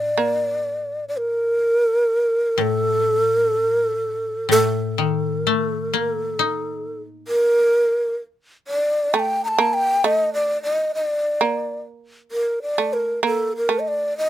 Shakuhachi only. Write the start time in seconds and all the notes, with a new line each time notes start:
Already playing: D5
1.09 D5
1.18 A#4
2.61 A4
3.30 A#4
3.45 A4
3.68 A#4
3.83 A4
4.51 A4
5.41 A#4
5.60 A4
5.91 A#4
6.10 A4
7.28 A#4
8.68 D5
9.14 A5
9.19 G5
9.45 A5 A#5
9.74 G5
10.05 D#5
10.34 D5
10.63 D#5
10.95 D5
12.32 A#4
12.62 D5
12.93 A#4
13.25 A4
13.56 A#4
13.79 D#5
13.88 D5
14.18 D#5